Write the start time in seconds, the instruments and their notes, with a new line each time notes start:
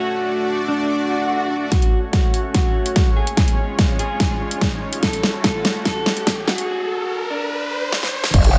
Already playing: supersaw synth A3 F#4, clean electric guitar F#4
0.06 supersaw synth D4 D5
0.68 clean electric guitar D4
0.89 swell
1.72 supersaw synth A3 C#4 F#4 C#5, clean electric guitar F#4, kick, snare, closed hi-hat, riser
1.82 closed hi-hat
2.13 clean electric guitar F#4, kick, snare, closed hi-hat
2.34 closed hi-hat
2.54 clean electric guitar F#4, kick, snare, closed hi-hat
2.86 closed hi-hat
2.96 kick, snare, closed hi-hat
3.16 clean electric guitar G#4
3.27 closed hi-hat
3.37 supersaw synth G#3 F4, kick, snare, closed hi-hat
3.48 closed hi-hat
3.79 kick, snare, closed hi-hat
3.99 clean electric guitar G#4, closed hi-hat
4.20 kick, snare, closed hi-hat
4.51 closed hi-hat
4.61 kick, snare, closed hi-hat
4.93 closed hi-hat
5.03 supersaw synth A3 F#4, clean electric guitar A4, kick, snare, closed hi-hat
5.13 closed hi-hat
5.23 snare
5.44 clean electric guitar A4, kick, snare, closed hi-hat
5.65 snare, closed hi-hat
5.85 clean electric guitar A4, kick, snare, closed hi-hat
6.06 snare
6.17 closed hi-hat
6.27 kick, snare, closed hi-hat
6.48 clean electric guitar F#4, snare
6.58 closed hi-hat
7.30 clean electric guitar D4
7.92 snare
8.03 snare
8.24 snare
8.34 wobble bass F#1, supersaw synth F#3 C#4 C#5 F#5, kick, closed hi-hat, crash, impact
8.44 closed hi-hat